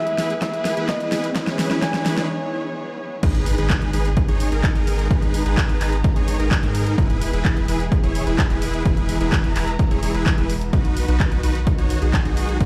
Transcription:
Already playing: E3 B3 E4 G#4 B4 E5, riser
0.07 closed hi-hat
0.18 E4 G#4 B4, snare, open hi-hat
0.30 closed hi-hat
0.42 E4 G#4 B4 E5, kick, snare, closed hi-hat
0.54 closed hi-hat
0.65 snare, open hi-hat
0.77 E4 G#4 B4, closed hi-hat
0.89 D#5, kick, snare, closed hi-hat
1.00 closed hi-hat
1.12 E4 G#4 B4, snare, open hi-hat
1.24 closed hi-hat
1.35 E4 G#4 B4 C#5, kick, snare, closed hi-hat
1.47 snare, closed hi-hat
1.59 snare, open hi-hat
1.71 E4 G#4 B4, snare, closed hi-hat
1.82 E4 G#4 B4 G#5, kick, snare, closed hi-hat
1.94 snare, closed hi-hat
2.06 snare, open hi-hat
2.17 E4 G#4 B4, snare, closed hi-hat
3.23 G#1 D#3 G#3 B3 D#4 G#4 B4, kick, closed hi-hat, crash, impact
3.35 closed hi-hat
3.46 open hi-hat
3.58 G#1 D#4 G#4 B4, closed hi-hat
3.70 kick, clap, closed hi-hat
3.82 closed hi-hat
3.93 G#1 D#4 G#4 B4, open hi-hat
4.05 closed hi-hat
4.17 kick, closed hi-hat
4.28 G#1 D#4 G#4 C#5, closed hi-hat
4.40 open hi-hat
4.52 G#1 D#4 G#4 A#4, closed hi-hat
4.64 kick, clap, closed hi-hat
4.75 G#1 D#4 G#4 A#4, closed hi-hat
4.87 open hi-hat
4.99 closed hi-hat
5.10 G#1 D#4 G#4 B4 A#5, kick, closed hi-hat
5.22 closed hi-hat
5.34 open hi-hat
5.46 G#1 D#4 G#4 B4, closed hi-hat
5.57 kick, clap, closed hi-hat
5.69 closed hi-hat
5.81 G#1 D#4 G#4 B4, clap, open hi-hat
5.92 closed hi-hat
6.04 kick, closed hi-hat
6.16 G#1 D#4 G#4 C#5, closed hi-hat
6.28 open hi-hat
6.39 G#1 D#4 G#4 A#4, closed hi-hat
6.51 kick, clap, closed hi-hat
6.63 G#2 D#4 G#4 A#4, closed hi-hat
6.75 open hi-hat
6.87 closed hi-hat
6.98 E1 E3 G#3 E4 G#4 B4, kick, closed hi-hat
7.10 closed hi-hat
7.22 open hi-hat
7.33 E1 E4 G#4 B4, closed hi-hat
7.45 kick, clap, closed hi-hat
7.57 closed hi-hat
7.68 E1 E4 G#4 B4, open hi-hat
7.80 closed hi-hat
7.92 kick, closed hi-hat
8.03 E1 E4 G#4 C#5, closed hi-hat
8.15 open hi-hat
8.27 E1 E4 G#4 B4, closed hi-hat
8.39 kick, clap, closed hi-hat
8.50 E1 E4 G#4 B4, closed hi-hat
8.62 open hi-hat
8.74 closed hi-hat
8.85 E1 E4 G#4 B4 A#5, kick, closed hi-hat
8.97 closed hi-hat
9.09 open hi-hat
9.21 E1 E4 G#4 B4, closed hi-hat
9.32 kick, clap, closed hi-hat
9.44 closed hi-hat
9.56 E1 E4 G#4 B4, clap, open hi-hat
9.68 closed hi-hat
9.79 kick, closed hi-hat
9.91 E1 E4 G#4 C#5, closed hi-hat
10.03 E1 E4 G#4 C#5, open hi-hat
10.14 E1 E4 G#4 B4, closed hi-hat
10.26 kick, clap, closed hi-hat
10.38 E1 E4 G#4 B4, closed hi-hat
10.50 open hi-hat
10.61 closed hi-hat
10.73 B1 D#3 F#3 D#4 F#4 B4, kick, closed hi-hat
10.85 closed hi-hat
10.97 open hi-hat
11.08 B1 D#4 F#4 B4, closed hi-hat
11.20 kick, clap, closed hi-hat
11.32 closed hi-hat
11.43 B1 D#4 F#4 B4, open hi-hat
11.55 closed hi-hat
11.67 kick, closed hi-hat
11.78 B1 D#4 F#4 C#5, closed hi-hat
11.90 open hi-hat
12.02 B1 D#4 F#4 G#4, closed hi-hat
12.14 kick, clap, closed hi-hat
12.25 B1 D#4 F#4 G#4, closed hi-hat
12.37 open hi-hat
12.49 closed hi-hat
12.60 B1 D#4 F#4 B4, kick, closed hi-hat

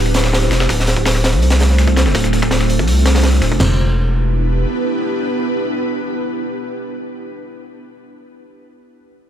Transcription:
Already playing: D1
0.06 snare
0.14 snare, closed hi-hat, open hi-hat
0.24 snare, closed hi-hat
0.33 snare, open hi-hat
0.42 snare, closed hi-hat
0.51 E1, snare, closed hi-hat, open hi-hat
0.60 snare, closed hi-hat
0.69 D1, kick, closed hi-hat, open hi-hat
0.79 snare
0.87 snare, closed hi-hat, open hi-hat
0.97 kick
1.05 snare, closed hi-hat, open hi-hat
1.15 snare
1.24 snare, closed hi-hat, open hi-hat
1.33 C2, snare, closed hi-hat
1.42 closed hi-hat, open hi-hat
1.50 snare, open hi-hat
1.60 snare, closed hi-hat, open hi-hat
1.70 snare
1.78 snare, closed hi-hat, open hi-hat
1.88 kick
1.96 snare, closed hi-hat, open hi-hat
2.06 E1, snare, closed hi-hat
2.15 D1, kick, snare, closed hi-hat, open hi-hat
2.24 snare, closed hi-hat
2.33 snare, closed hi-hat, open hi-hat
2.42 kick, snare, closed hi-hat
2.51 snare, closed hi-hat, open hi-hat
2.61 snare, closed hi-hat
2.69 closed hi-hat, open hi-hat
2.79 C2, kick
2.87 closed hi-hat, open hi-hat
3.06 snare, closed hi-hat, open hi-hat
3.15 snare, closed hi-hat, open hi-hat
3.19 snare, closed hi-hat
3.23 snare, closed hi-hat, open hi-hat
3.33 snare
3.42 D1, snare, closed hi-hat, open hi-hat
3.52 G1, kick
3.60 E1 B3 D4 E4 G4 B4, snare, floor tom, splash

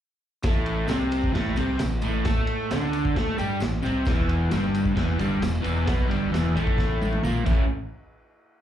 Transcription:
0.43 A1 A2 A3, kick, snare, ride, tambourine
0.66 ride, tambourine
0.88 C2 C3 C4, snare, ride, tambourine
1.11 ride, tambourine
1.24 kick
1.32 A1 A2 A3, kick, snare, ride, tambourine
1.56 C2 C3 C4, ride, tambourine
1.79 A1 A2, snare, ride, tambourine
2.02 A1 A2 A3, ride, tambourine
2.25 A2 A3 A4, kick, snare, ride, tambourine
2.47 ride
2.71 D2 D3 D4, snare, ride, tambourine
2.93 ride, tambourine
3.05 kick
3.16 A2 A3 A4, kick, snare, ride, tambourine
3.38 G2 G3 G4, ride, tambourine
3.60 A1 A2, snare, ride, tambourine
3.82 C2 C3 C4, tambourine
3.86 ride
4.05 E1 E2 E3, kick, snare, ride, tambourine
4.28 ride, tambourine
4.51 G1 G2 G3, snare, ride, tambourine
4.75 ride, tambourine
4.85 kick
4.95 E1 E2 E3, kick, snare, ride, tambourine
5.19 G1 G2 G3, ride, tambourine
5.41 E1 E2, snare, ride, tambourine
5.61 E1 E2 E3, ride
5.66 tambourine
5.85 B1 B2 B3, kick, snare, ride
5.89 tambourine
6.07 G1 G2 G3, ride
6.13 tambourine
6.31 E1 E2 E3, ride
6.35 snare, tambourine
6.54 A1 A2 A3, ride, tambourine
6.67 kick
6.78 kick, snare, tambourine
7.02 high tom, tambourine
7.13 high tom
7.23 A#1 A#2 A#3, mid tom, tambourine
7.45 A1 A2 E3 A3 C#4 E4, kick, crash, tambourine

